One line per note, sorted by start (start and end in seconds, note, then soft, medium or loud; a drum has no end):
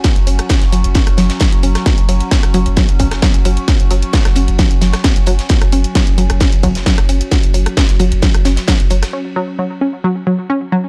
0.00 9.13 F#3 medium
0.00 9.13 C#4 medium
0.00 ride medium
0.04 0.11 F#3 medium
0.04 kick loud
0.04 snare loud
0.04 closed hi-hat medium
0.16 0.26 F#1 medium
0.16 closed hi-hat medium
0.27 0.39 F#1 loud
0.27 0.34 C#4 medium
0.27 open hi-hat loud
0.27 ride medium
0.39 cross-stick medium
0.39 closed hi-hat medium
0.49 0.54 F#3 loud
0.49 kick loud
0.49 snare loud
0.49 closed hi-hat medium
0.49 ride medium
0.61 0.72 F#1 medium
0.61 snare soft
0.61 closed hi-hat medium
0.72 0.84 F#1 loud
0.72 0.79 F#3 medium
0.72 open hi-hat loud
0.72 ride medium
0.84 0.95 F#1 medium
0.84 closed hi-hat medium
0.95 1.02 C#4 medium
0.95 kick loud
0.95 snare loud
0.95 closed hi-hat medium
0.95 ride medium
1.07 1.17 F#1 medium
1.07 cross-stick medium
1.07 closed hi-hat medium
1.17 1.30 F#1 loud
1.17 1.22 F#3 loud
1.17 snare medium
1.17 open hi-hat loud
1.17 ride medium
1.30 snare medium
1.30 closed hi-hat medium
1.40 1.47 F#3 medium
1.40 kick loud
1.40 snare loud
1.40 closed hi-hat medium
1.40 ride medium
1.52 1.63 F#1 medium
1.52 closed hi-hat medium
1.63 1.75 F#1 loud
1.63 1.70 C#4 medium
1.63 open hi-hat medium
1.63 ride medium
1.75 cross-stick medium
1.75 snare soft
1.75 closed hi-hat medium
1.86 1.90 F#3 loud
1.86 kick loud
1.86 snare loud
1.86 closed hi-hat medium
1.86 ride medium
1.98 2.08 F#1 medium
1.98 closed hi-hat medium
2.09 2.21 F#1 loud
2.09 2.16 F#3 medium
2.09 open hi-hat loud
2.09 ride medium
2.21 closed hi-hat medium
2.31 2.38 C#4 medium
2.31 kick loud
2.31 snare loud
2.31 closed hi-hat medium
2.31 ride medium
2.43 2.54 F#1 medium
2.43 cross-stick medium
2.43 closed hi-hat medium
2.43 ride soft
2.54 2.66 F#1 loud
2.54 2.58 F#3 loud
2.54 open hi-hat medium
2.54 ride medium
2.66 2.77 F#1 medium
2.66 closed hi-hat medium
2.77 2.84 F#3 medium
2.77 kick loud
2.77 snare loud
2.77 closed hi-hat medium
2.77 ride medium
2.88 2.99 F#1 medium
2.88 closed hi-hat medium
2.88 ride soft
2.99 3.11 F#1 loud
2.99 3.07 C#4 medium
2.99 kick medium
2.99 open hi-hat loud
2.99 ride medium
3.11 cross-stick medium
3.11 snare medium
3.11 closed hi-hat medium
3.22 3.27 F#3 loud
3.22 kick loud
3.22 snare loud
3.22 closed hi-hat medium
3.22 ride medium
3.34 3.45 F#1 medium
3.34 closed hi-hat medium
3.45 3.57 F#1 loud
3.45 3.52 F#3 medium
3.45 open hi-hat loud
3.45 ride medium
3.57 closed hi-hat soft
3.68 3.75 C#4 medium
3.68 kick loud
3.68 snare loud
3.68 closed hi-hat medium
3.68 ride medium
3.80 3.90 F#1 medium
3.80 closed hi-hat soft
3.91 4.02 F#1 loud
3.91 3.95 F#3 loud
3.91 open hi-hat loud
3.91 ride medium
4.03 closed hi-hat medium
4.13 4.20 F#3 medium
4.13 kick loud
4.13 snare loud
4.13 closed hi-hat medium
4.13 ride medium
4.25 4.36 F#1 medium
4.25 cross-stick loud
4.25 snare soft
4.25 closed hi-hat soft
4.35 4.48 F#1 loud
4.35 4.43 C#4 medium
4.35 open hi-hat medium
4.35 ride medium
4.48 4.59 F#1 medium
4.48 closed hi-hat soft
4.59 4.63 F#3 loud
4.59 kick loud
4.59 snare loud
4.59 closed hi-hat medium
4.59 ride medium
4.71 4.81 F#1 medium
4.71 closed hi-hat medium
4.81 4.93 F#1 loud
4.81 4.88 F#3 medium
4.81 snare medium
4.81 open hi-hat loud
4.81 ride medium
4.93 cross-stick loud
4.93 snare medium
4.93 closed hi-hat soft
5.04 5.11 C#4 medium
5.04 kick loud
5.04 snare loud
5.04 closed hi-hat medium
5.04 ride medium
5.16 5.26 F#1 medium
5.16 closed hi-hat soft
5.26 5.39 F#1 loud
5.26 5.31 F#3 loud
5.26 open hi-hat medium
5.26 ride medium
5.39 snare soft
5.39 closed hi-hat soft
5.49 5.57 F#3 medium
5.49 kick loud
5.49 snare loud
5.49 closed hi-hat medium
5.49 ride medium
5.62 5.72 F#1 medium
5.62 cross-stick medium
5.62 closed hi-hat soft
5.72 5.84 F#1 loud
5.72 5.79 C#4 medium
5.72 open hi-hat loud
5.72 ride medium
5.84 closed hi-hat medium
5.95 5.99 F#3 loud
5.95 kick loud
5.95 snare loud
5.95 closed hi-hat medium
5.95 ride medium
6.07 6.17 F#1 medium
6.07 closed hi-hat medium
6.07 ride soft
6.18 6.29 F#1 loud
6.18 6.25 F#3 medium
6.18 open hi-hat medium
6.18 ride medium
6.30 6.41 F#1 medium
6.30 cross-stick loud
6.30 closed hi-hat soft
6.40 6.47 C#4 medium
6.40 kick loud
6.40 snare loud
6.40 closed hi-hat medium
6.40 ride medium
6.52 6.63 F#1 medium
6.52 closed hi-hat medium
6.52 ride soft
6.63 6.75 F#1 loud
6.63 6.67 F#3 loud
6.63 kick medium
6.63 open hi-hat loud
6.63 ride medium
6.75 snare medium
6.75 closed hi-hat medium
6.86 6.93 F#3 medium
6.86 kick loud
6.86 snare loud
6.86 closed hi-hat medium
6.86 ride medium
6.98 7.08 F#1 medium
6.98 cross-stick loud
6.98 closed hi-hat medium
7.09 7.21 F#1 loud
7.09 7.16 C#4 medium
7.09 open hi-hat medium
7.09 ride medium
7.21 closed hi-hat medium
7.31 7.36 F#3 medium
7.31 kick loud
7.31 snare loud
7.31 closed hi-hat medium
7.31 ride medium
7.44 7.54 F#1 medium
7.44 closed hi-hat medium
7.54 7.66 F#1 loud
7.54 7.61 F#3 medium
7.54 open hi-hat loud
7.54 ride medium
7.66 cross-stick loud
7.66 closed hi-hat medium
7.77 7.84 C#4 medium
7.77 kick loud
7.77 snare loud
7.77 closed hi-hat medium
7.77 ride medium
7.89 7.99 F#1 medium
7.89 snare soft
7.89 closed hi-hat medium
7.99 8.11 F#1 loud
7.99 8.04 F#3 loud
7.99 open hi-hat medium
7.99 ride medium
8.12 8.22 F#1 medium
8.12 closed hi-hat medium
8.22 8.29 F#3 medium
8.22 kick loud
8.22 snare loud
8.22 closed hi-hat medium
8.22 ride medium
8.34 8.45 F#1 medium
8.34 cross-stick medium
8.34 closed hi-hat medium
8.45 8.57 F#1 loud
8.45 8.52 C#4 medium
8.45 snare medium
8.45 open hi-hat loud
8.45 ride medium
8.56 snare medium
8.56 closed hi-hat medium
8.68 8.72 F#3 loud
8.68 kick loud
8.68 snare loud
8.68 closed hi-hat medium
8.68 ride medium
8.80 8.90 F#1 medium
8.80 closed hi-hat medium
8.90 9.02 F#1 loud
8.90 8.97 F#3 medium
8.90 open hi-hat medium
8.90 ride medium
9.03 cross-stick medium
9.03 snare soft
9.03 closed hi-hat medium
9.13 9.20 C#4 medium
9.36 9.40 F#3 loud
9.59 9.66 F#3 medium
9.81 9.88 C#4 medium
10.04 10.08 F#3 loud
10.27 10.34 F#3 medium
10.50 10.56 C#4 medium
10.72 10.76 F#3 loud